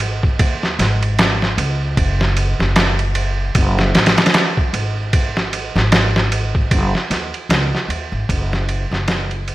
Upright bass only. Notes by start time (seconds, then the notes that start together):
Already playing: G#1
0.39 D#2
0.79 G#1
1.58 C#2
1.97 F#1
2.60 F#1
3.55 F#1
3.95 A1
4.73 G#1
5.76 G#1
6.71 F#1
7.10 D#2
7.49 C#2
7.88 D#2
8.12 G#1
8.29 F#1
8.91 F#1